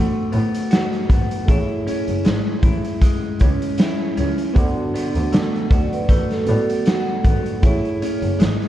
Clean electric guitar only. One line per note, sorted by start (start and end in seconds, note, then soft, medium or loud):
0.00 1.48 D3 medium
0.00 2.24 A3 medium
0.00 0.31 B3 medium
0.00 0.70 F#4 medium
0.32 1.08 B3 medium
0.71 1.48 F#4 medium
1.09 1.57 B3 medium
1.49 2.62 E4 medium
1.87 3.40 C#4 medium
2.25 3.01 G#3 medium
2.63 3.78 E4 medium
3.02 4.64 G#3 medium
3.41 4.16 C#4 medium
3.79 4.55 E4 medium
4.17 4.64 C#4 medium
4.55 7.63 D3 medium
4.55 5.69 F#4 medium
4.94 6.47 B3 medium
5.32 6.09 A3 medium
5.70 6.86 F#4 medium
6.09 8.39 A3 medium
6.48 7.24 B3 soft
6.87 7.63 F#4 medium
7.25 7.72 B3 medium
7.64 8.68 E4 medium
8.02 8.68 C#4 medium
8.39 8.68 G#3 medium